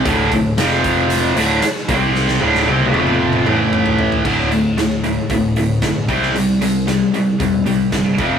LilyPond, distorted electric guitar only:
\new Staff \with { instrumentName = "Distorted electric guitar" } { \clef bass \time 4/4 \key d \minor \tempo 4 = 114 <d, a, d>8 <d, a,>8 <f, c f>4. <d, a, d>8 r8 <c g c'>8~ | <c g c'>8 <d, a, d>8 <c g c'>8 <f, c f>4 <a, e a>4. | <d, a, d>8 <d, a,>8 <d, a,>8 <d, a,>8 <d, a,>8 <d, a,>8 <d, a,>8 <c g c'>8 | <c g>8 <c g>8 <c g>8 <c g>8 <c g>8 <c g>8 <c g>8 <f, c f>8 | }